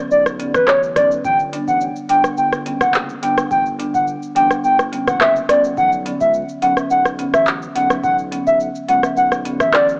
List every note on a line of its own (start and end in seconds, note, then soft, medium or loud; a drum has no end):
0.11 0.56 B1 loud
0.11 0.24 D5 medium
0.11 shaker medium
0.26 cross-stick medium
0.26 shaker medium
0.39 0.51 D3 medium
0.39 0.52 F#3 medium
0.39 0.52 B3 medium
0.39 0.52 C#4 medium
0.39 closed hi-hat medium
0.39 shaker soft
0.54 0.98 A1 medium
0.54 0.66 B4 medium
0.54 kick medium
0.54 cross-stick loud
0.54 shaker medium
0.68 0.81 C#5 medium
0.68 cross-stick medium
0.68 clap medium
0.68 shaker medium
0.83 shaker medium
0.96 1.19 B1 medium
0.96 1.08 D3 medium
0.96 1.08 F#3 medium
0.96 1.08 B3 medium
0.96 1.08 C#4 medium
0.96 1.09 D5 medium
0.96 kick loud
0.96 cross-stick medium
0.96 closed hi-hat medium
0.96 shaker medium
1.11 shaker medium
1.24 1.59 G1 loud
1.24 1.38 G5 loud
1.24 kick loud
1.24 shaker medium
1.39 shaker medium
1.52 1.65 D3 medium
1.52 1.65 G3 medium
1.52 1.65 B3 medium
1.52 1.65 D4 medium
1.52 closed hi-hat medium
1.52 shaker medium
1.68 1.90 A1 medium
1.68 1.79 F#5 medium
1.68 kick medium
1.68 shaker medium
1.81 shaker medium
1.96 shaker medium
2.09 2.21 G1 medium
2.09 2.21 D3 medium
2.09 2.21 G3 medium
2.09 2.21 B3 medium
2.09 2.22 D4 medium
2.09 2.23 G5 medium
2.09 closed hi-hat medium
2.09 shaker medium
2.24 cross-stick medium
2.24 shaker medium
2.38 2.72 G1 loud
2.38 2.51 G5 medium
2.38 shaker medium
2.53 cross-stick medium
2.53 shaker medium
2.66 2.78 D3 medium
2.66 2.78 G3 medium
2.66 2.78 B3 medium
2.66 2.78 C#4 medium
2.66 closed hi-hat medium
2.66 shaker medium
2.81 3.14 F#1 medium
2.81 2.93 F#5 medium
2.81 kick medium
2.81 cross-stick loud
2.81 shaker medium
2.94 clap loud
2.94 shaker medium
3.09 shaker medium
3.22 3.45 G1 medium
3.22 3.34 D3 medium
3.22 3.35 G3 medium
3.22 3.35 B3 medium
3.22 3.35 D4 medium
3.22 3.36 G5 medium
3.22 closed hi-hat medium
3.22 shaker medium
3.38 cross-stick loud
3.38 shaker medium
3.51 3.86 G1 loud
3.51 3.64 G5 loud
3.51 kick loud
3.51 shaker medium
3.66 shaker soft
3.79 3.91 D3 medium
3.79 3.91 G3 medium
3.79 3.91 B3 medium
3.79 3.91 D4 medium
3.79 closed hi-hat medium
3.79 shaker medium
3.94 4.17 G1 medium
3.94 4.06 F#5 medium
3.94 kick medium
3.94 shaker medium
4.07 shaker medium
4.22 shaker medium
4.36 4.48 A1 loud
4.36 4.48 D3 medium
4.36 4.48 G3 medium
4.36 4.48 B3 medium
4.36 4.48 D4 medium
4.36 4.49 G5 medium
4.36 closed hi-hat medium
4.36 shaker soft
4.51 cross-stick medium
4.51 shaker medium
4.64 4.99 G1 loud
4.64 4.77 G5 medium
4.64 shaker medium
4.79 cross-stick medium
4.79 shaker medium
4.92 5.04 D3 medium
4.92 5.04 G3 medium
4.92 5.04 B3 medium
4.92 5.05 C#4 medium
4.92 closed hi-hat medium
4.92 shaker medium
5.07 5.41 F#1 loud
5.07 5.19 F#5 medium
5.07 kick medium
5.07 cross-stick loud
5.07 shaker medium
5.21 5.34 E5 medium
5.21 cross-stick loud
5.21 clap loud
5.21 shaker medium
5.36 shaker medium
5.49 5.72 G1 medium
5.49 5.61 D3 medium
5.49 5.61 G3 medium
5.49 5.61 B3 medium
5.49 5.61 C#4 medium
5.49 5.62 D5 medium
5.49 cross-stick loud
5.49 closed hi-hat medium
5.49 shaker medium
5.64 shaker medium
5.77 6.12 B1 loud
5.77 5.90 F#5 loud
5.77 kick loud
5.77 shaker medium
5.92 shaker medium
6.05 6.17 D3 medium
6.05 6.18 F#3 medium
6.05 6.18 B3 medium
6.05 6.18 C#4 medium
6.05 closed hi-hat medium
6.05 shaker medium
6.21 6.43 C#2 medium
6.21 6.32 E5 medium
6.21 kick medium
6.21 shaker medium
6.34 shaker medium
6.49 shaker medium
6.62 6.74 B1 medium
6.62 6.74 D3 medium
6.62 6.74 F#3 medium
6.62 6.74 B3 medium
6.62 6.74 C#4 medium
6.62 6.75 F#5 medium
6.62 closed hi-hat medium
6.62 shaker soft
6.77 cross-stick medium
6.77 shaker medium
6.90 7.25 B1 loud
6.90 7.04 F#5 medium
6.90 shaker medium
7.05 cross-stick medium
7.05 shaker medium
7.19 7.31 D3 medium
7.19 7.31 F#3 medium
7.19 7.31 B3 medium
7.19 7.31 C#4 medium
7.19 closed hi-hat medium
7.19 shaker soft
7.34 7.67 A1 medium
7.34 7.45 E5 medium
7.34 kick loud
7.34 cross-stick loud
7.34 shaker medium
7.47 clap medium
7.47 shaker medium
7.62 shaker medium
7.75 7.98 B1 medium
7.75 7.87 D3 medium
7.75 7.87 F#3 medium
7.75 7.88 B3 medium
7.75 7.88 C#4 medium
7.75 7.89 F#5 medium
7.75 closed hi-hat medium
7.75 shaker medium
7.90 cross-stick loud
7.90 shaker medium
8.04 8.38 B1 loud
8.04 8.17 F#5 loud
8.04 kick loud
8.04 shaker medium
8.19 shaker medium
8.32 8.44 D3 medium
8.32 8.44 F#3 medium
8.32 8.44 B3 medium
8.32 8.44 C#4 medium
8.32 closed hi-hat medium
8.32 shaker medium
8.47 8.70 B1 loud
8.47 8.59 E5 medium
8.47 kick medium
8.47 shaker medium
8.60 shaker medium
8.75 shaker medium
8.88 9.01 C#2 medium
8.88 9.01 D3 medium
8.88 9.01 F#3 medium
8.88 9.01 B3 medium
8.88 9.01 C#4 medium
8.88 9.02 F#5 medium
8.88 closed hi-hat medium
8.88 shaker medium
9.03 cross-stick medium
9.03 shaker medium
9.17 9.62 B1 loud
9.17 9.30 F#5 medium
9.17 shaker medium
9.32 cross-stick medium
9.32 shaker medium
9.45 9.57 D3 medium
9.45 9.57 F#3 medium
9.45 9.57 B3 medium
9.45 9.57 C#4 medium
9.45 closed hi-hat medium
9.45 shaker medium
9.60 10.00 A1 medium
9.60 9.72 E5 medium
9.60 kick medium
9.60 cross-stick loud
9.60 shaker medium
9.73 9.87 D5 loud
9.73 cross-stick medium
9.73 clap medium
9.73 shaker medium
9.89 shaker medium